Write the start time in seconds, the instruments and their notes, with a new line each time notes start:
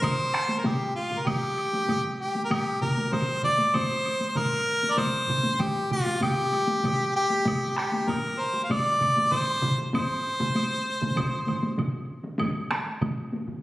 0.02 harmonica C5, taiko, taiko low-mid, taiko mid, taiko high, high woodblock
0.34 taiko rim
0.48 taiko high
0.59 harmonica A#4
0.64 harmonica G4, taiko low-mid, taiko mid, taiko high, high woodblock
0.96 harmonica F4
1.11 taiko low-mid, taiko mid, taiko high
1.19 harmonica A#4
1.26 harmonica G4, taiko, taiko low-mid, taiko mid, taiko high, high woodblock
1.58 high woodblock
1.73 taiko high
1.88 taiko low-mid, taiko mid, taiko high, high woodblock
2.21 harmonica G4
2.35 taiko high
2.45 harmonica A#4
2.50 harmonica G4, taiko, taiko low-mid, taiko mid, taiko high, high woodblock
2.81 harmonica A#4, taiko low-mid, taiko mid
2.97 taiko high
3.12 harmonica C5, taiko low-mid, taiko mid, taiko high, high woodblock
3.43 harmonica D5, taiko low-mid, taiko mid
3.59 taiko high
3.74 harmonica C5, taiko, taiko low-mid, taiko mid, taiko high, high woodblock
4.05 taiko high, high woodblock
4.20 taiko high
4.29 harmonica C5
4.35 harmonica A#4, taiko low-mid, taiko mid, taiko high, high woodblock
4.83 taiko high
4.91 harmonica D5
4.97 harmonica C5, taiko, taiko low-mid, taiko mid, taiko high, high woodblock
5.28 taiko low-mid, taiko mid
5.44 taiko high
5.59 harmonica G4, taiko low-mid, taiko mid, taiko high, high woodblock
5.90 harmonica F4, taiko low-mid, taiko mid
6.06 taiko high
6.21 harmonica G4, taiko, taiko low-mid, taiko mid, taiko high, high woodblock
6.52 taiko high, high woodblock
6.68 taiko high
6.83 taiko low-mid, taiko mid, taiko high, high woodblock
7.16 harmonica G4
7.30 taiko high
7.45 taiko, taiko low-mid, taiko mid, taiko high, high woodblock
7.77 harmonica G4, taiko rim
7.92 taiko high
8.07 harmonica A#4, taiko low-mid, taiko mid, taiko high, high woodblock
8.40 harmonica C5
8.54 taiko high
8.64 harmonica F5
8.70 harmonica D5, taiko, taiko low-mid, taiko mid, taiko high, high woodblock
9.01 taiko low-mid, taiko mid, high woodblock
9.16 taiko high
9.31 harmonica C5, taiko low-mid, taiko mid, taiko high, high woodblock
9.62 taiko low-mid, taiko mid
9.78 taiko high
9.93 harmonica C5, taiko, taiko low-mid, taiko mid, taiko high, high woodblock
10.40 taiko low-mid, taiko mid, taiko high
10.55 taiko high, high woodblock
11.01 taiko low-mid, taiko mid, taiko high
11.17 taiko, taiko low-mid, taiko mid, taiko high, high woodblock
11.47 taiko low-mid, taiko mid, taiko high, high woodblock
11.63 taiko high
11.78 taiko low-mid, taiko mid, taiko high, high woodblock
12.23 taiko high
12.39 taiko, taiko low-mid, taiko mid, taiko high, high woodblock
12.55 taiko high
12.71 taiko rim, taiko high
12.86 taiko high
13.01 taiko low-mid, taiko mid, taiko high, high woodblock
13.18 taiko high
13.33 taiko high
13.47 taiko low-mid, taiko mid, taiko high